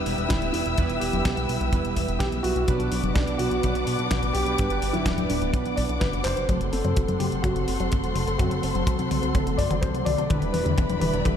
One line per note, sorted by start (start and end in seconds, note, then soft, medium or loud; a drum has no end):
0.00 0.75 G3 medium
0.00 0.75 B3 medium
0.00 0.25 D4 medium
0.00 0.75 E4 medium
0.00 0.75 B4 medium
0.00 2.64 B4 medium
0.00 2.64 E5 medium
0.00 2.64 G5 medium
0.00 2.64 E6 medium
0.06 0.16 E1 loud
0.06 open hi-hat loud
0.18 0.28 E1 medium
0.18 closed hi-hat soft
0.28 0.40 E1 loud
0.28 0.51 E4 medium
0.28 kick loud
0.28 snare loud
0.28 closed hi-hat medium
0.42 0.52 D1 medium
0.42 closed hi-hat soft
0.52 0.63 E1 medium
0.52 1.02 E4 medium
0.52 open hi-hat loud
0.66 0.75 E1 medium
0.66 closed hi-hat soft
0.77 0.88 E2 loud
0.77 1.70 G3 medium
0.77 1.70 B3 medium
0.77 1.70 E4 medium
0.77 1.70 B4 loud
0.77 kick loud
0.77 closed hi-hat medium
0.90 0.99 E1 medium
0.90 closed hi-hat soft
1.00 1.11 E1 medium
1.00 1.92 G4 loud
1.00 open hi-hat loud
1.13 1.23 E1 medium
1.13 closed hi-hat soft
1.13 high conga medium
1.25 1.35 B1 loud
1.25 kick loud
1.25 snare loud
1.25 closed hi-hat medium
1.37 1.47 B1 medium
1.37 closed hi-hat soft
1.49 1.59 B1 medium
1.49 open hi-hat loud
1.61 1.71 B1 medium
1.61 closed hi-hat soft
1.73 1.82 E1 loud
1.73 2.65 G3 medium
1.73 2.65 B3 medium
1.73 2.65 E4 medium
1.73 2.65 B4 medium
1.73 kick loud
1.73 closed hi-hat medium
1.85 1.94 E1 medium
1.85 closed hi-hat soft
1.96 2.06 E1 loud
1.96 kick medium
1.96 open hi-hat loud
2.08 2.18 E1 medium
2.08 closed hi-hat soft
2.19 2.30 B1 loud
2.19 2.24 G4 loud
2.19 kick loud
2.19 snare loud
2.19 closed hi-hat medium
2.32 2.42 B1 medium
2.32 closed hi-hat soft
2.43 2.54 B1 loud
2.43 3.17 F#4 loud
2.43 open hi-hat loud
2.56 2.66 B1 medium
2.56 closed hi-hat soft
2.68 2.78 B1 loud
2.68 3.60 B2 medium
2.68 3.60 F#3 medium
2.68 3.60 B3 medium
2.68 3.60 D4 medium
2.68 6.45 B4 medium
2.68 3.60 B4 loud
2.68 6.45 D5 medium
2.68 4.57 F#5 medium
2.68 5.51 D6 medium
2.68 kick loud
2.68 closed hi-hat loud
2.80 2.90 B1 medium
2.80 closed hi-hat soft
2.92 3.02 B1 loud
2.92 open hi-hat loud
3.04 3.13 F#1 medium
3.04 closed hi-hat soft
3.04 high conga medium
3.14 3.25 B1 loud
3.14 3.40 D4 medium
3.14 kick loud
3.14 snare loud
3.14 closed hi-hat medium
3.27 3.37 B1 medium
3.27 closed hi-hat soft
3.38 3.49 B1 medium
3.38 4.37 F#4 loud
3.38 open hi-hat loud
3.51 3.61 B1 medium
3.51 closed hi-hat soft
3.63 3.73 B1 loud
3.63 4.56 B2 medium
3.63 4.56 F#3 medium
3.63 4.56 B3 medium
3.63 4.56 D4 medium
3.63 4.56 B4 medium
3.63 kick loud
3.63 closed hi-hat medium
3.75 3.85 B1 medium
3.75 closed hi-hat soft
3.87 3.97 B1 loud
3.87 open hi-hat loud
3.99 4.09 B1 medium
3.99 closed hi-hat soft
4.11 4.21 B1 loud
4.11 kick loud
4.11 snare loud
4.11 closed hi-hat loud
4.23 4.33 A1 medium
4.23 closed hi-hat soft
4.33 4.44 B1 medium
4.33 4.95 G4 loud
4.33 open hi-hat loud
4.46 4.56 B1 medium
4.46 closed hi-hat soft
4.58 5.51 G2 medium
4.58 4.69 G2 loud
4.58 5.51 G3 medium
4.58 5.51 B3 medium
4.58 5.51 D4 medium
4.58 5.51 B4 loud
4.58 5.53 G5 medium
4.58 kick loud
4.58 closed hi-hat loud
4.70 4.80 G1 medium
4.70 closed hi-hat soft
4.82 4.92 G1 medium
4.82 open hi-hat loud
4.93 5.04 G1 medium
4.93 5.27 E4 medium
4.93 closed hi-hat soft
4.93 high conga medium
5.06 5.16 D1 loud
5.06 kick loud
5.06 snare loud
5.06 closed hi-hat medium
5.18 5.28 D1 medium
5.18 closed hi-hat soft
5.18 high conga medium
5.29 5.40 D1 medium
5.29 5.97 D4 medium
5.29 open hi-hat loud
5.42 5.52 D1 medium
5.42 closed hi-hat soft
5.53 5.63 B1 loud
5.53 6.46 B2 medium
5.53 6.46 F#3 medium
5.53 6.46 B3 medium
5.53 6.46 D4 medium
5.53 6.46 B4 medium
5.53 6.48 F#5 medium
5.53 6.48 D6 medium
5.53 kick loud
5.53 closed hi-hat medium
5.66 5.75 B1 medium
5.66 closed hi-hat soft
5.76 5.87 B1 loud
5.76 5.81 D5 loud
5.76 kick medium
5.76 open hi-hat loud
5.89 5.99 B1 medium
5.89 closed hi-hat soft
6.00 6.11 F#1 loud
6.00 6.05 B4 loud
6.00 kick loud
6.00 snare loud
6.00 closed hi-hat medium
6.13 6.23 F#1 medium
6.13 closed hi-hat soft
6.24 6.35 F#1 medium
6.24 6.73 C5 loud
6.24 clap medium
6.24 open hi-hat loud
6.37 6.47 F#1 medium
6.37 closed hi-hat soft
6.49 6.59 F#1 loud
6.49 7.41 F#3 medium
6.49 6.60 F#3 loud
6.49 7.41 A3 medium
6.49 7.41 C4 medium
6.49 10.26 A4 medium
6.49 7.41 A4 loud
6.49 10.26 C5 medium
6.49 10.26 F#5 medium
6.49 10.26 C6 medium
6.49 kick loud
6.49 closed hi-hat medium
6.49 mid tom soft
6.61 6.71 F#1 medium
6.61 closed hi-hat soft
6.71 6.83 F#1 medium
6.71 6.84 C4 medium
6.71 7.16 A4 loud
6.71 open hi-hat loud
6.85 6.94 F#2 medium
6.85 6.95 F#3 loud
6.85 closed hi-hat soft
6.85 mid tom soft
6.96 7.07 F#1 loud
6.96 7.08 F#4 medium
6.96 kick loud
6.96 closed hi-hat medium
7.08 7.18 F#1 medium
7.08 closed hi-hat soft
7.08 high conga medium
7.19 7.30 F#1 medium
7.19 7.31 F#3 medium
7.19 7.24 G4 medium
7.19 open hi-hat loud
7.19 mid tom soft
7.32 7.42 F#1 medium
7.32 7.43 A4 medium
7.32 closed hi-hat soft
7.42 7.54 F#1 loud
7.42 8.37 F#3 medium
7.42 7.56 F#3 loud
7.42 8.37 A3 medium
7.42 8.37 C4 medium
7.42 8.37 F#4 medium
7.42 8.37 A4 medium
7.42 kick loud
7.42 closed hi-hat medium
7.42 mid tom medium
7.56 7.66 F#1 medium
7.56 closed hi-hat soft
7.68 7.78 F#1 medium
7.68 7.80 C4 medium
7.68 open hi-hat loud
7.80 7.90 F#1 medium
7.80 7.90 F#3 loud
7.80 closed hi-hat soft
7.92 8.02 F#1 loud
7.92 8.03 F#4 medium
7.92 kick loud
7.92 closed hi-hat medium
8.04 8.13 E1 medium
8.04 closed hi-hat soft
8.16 8.25 F#1 medium
8.16 8.26 F#3 medium
8.16 open hi-hat loud
8.16 mid tom medium
8.27 8.37 F#1 medium
8.27 8.38 A4 medium
8.27 closed hi-hat soft
8.38 8.49 F#2 loud
8.38 9.32 F#3 medium
8.38 8.51 F#3 loud
8.38 9.32 A3 medium
8.38 9.32 C4 medium
8.38 9.06 F#4 medium
8.38 9.32 A4 medium
8.38 kick loud
8.38 closed hi-hat medium
8.38 mid tom medium
8.51 8.61 F#1 medium
8.51 closed hi-hat soft
8.63 8.73 F#1 medium
8.63 8.75 C4 medium
8.63 open hi-hat loud
8.75 8.85 F#1 medium
8.75 8.86 F#3 loud
8.75 closed hi-hat soft
8.87 8.97 C2 loud
8.87 8.99 F#4 medium
8.87 kick loud
8.87 closed hi-hat medium
8.99 9.09 C2 medium
8.99 closed hi-hat soft
8.99 high conga medium
9.11 9.21 C2 medium
9.11 9.21 F#3 medium
9.11 open hi-hat medium
9.11 mid tom medium
9.23 9.33 C2 medium
9.23 9.33 A4 medium
9.23 closed hi-hat soft
9.35 9.45 F#1 loud
9.35 9.46 F#3 loud
9.35 10.27 F#3 medium
9.35 10.27 A3 medium
9.35 10.27 C4 medium
9.35 10.27 A4 medium
9.35 kick loud
9.35 closed hi-hat medium
9.35 mid tom medium
9.47 9.56 F#1 medium
9.47 closed hi-hat soft
9.57 9.68 F#1 loud
9.57 9.70 C4 medium
9.57 9.80 D5 medium
9.57 kick medium
9.57 open hi-hat loud
9.70 9.80 F#1 medium
9.70 9.81 F#3 loud
9.70 closed hi-hat soft
9.70 mid tom medium
9.81 9.92 C2 loud
9.81 9.94 F#4 medium
9.81 9.86 C5 medium
9.81 kick loud
9.81 closed hi-hat medium
9.94 10.04 C2 medium
9.94 closed hi-hat soft
10.05 10.16 C2 loud
10.05 10.17 F#3 medium
10.05 10.55 D5 loud
10.05 open hi-hat loud
10.05 mid tom medium
10.18 10.28 C2 medium
10.18 10.28 A4 medium
10.18 closed hi-hat soft
10.30 10.40 E1 loud
10.30 10.41 D3 loud
10.30 11.22 G3 medium
10.30 11.22 D4 medium
10.30 11.22 E4 medium
10.30 11.37 G4 medium
10.30 11.22 B4 loud
10.30 11.37 D5 medium
10.30 11.37 E5 medium
10.30 11.37 B5 medium
10.30 kick loud
10.30 closed hi-hat medium
10.30 mid tom medium
10.42 10.52 E1 medium
10.42 closed hi-hat soft
10.52 10.64 E1 loud
10.52 10.65 G3 medium
10.52 10.98 B4 medium
10.52 open hi-hat loud
10.52 mid tom medium
10.66 10.76 E2 medium
10.66 10.76 D3 loud
10.66 closed hi-hat soft
10.78 10.88 E1 loud
10.78 10.89 B3 medium
10.78 kick loud
10.78 closed hi-hat medium
10.78 mid tom medium
10.89 10.99 E1 medium
10.89 closed hi-hat soft
10.89 high conga medium
11.00 11.11 E1 medium
11.00 11.12 D3 medium
11.00 11.37 B4 medium
11.00 open hi-hat loud
11.00 mid tom medium
11.13 11.23 E1 medium
11.13 11.24 D4 medium
11.13 closed hi-hat soft
11.25 11.35 E1 loud
11.25 11.37 D3 loud
11.25 11.37 G3 medium
11.25 11.37 D4 medium
11.25 11.37 E4 medium
11.25 11.37 B4 medium
11.25 kick loud
11.25 closed hi-hat medium
11.25 mid tom medium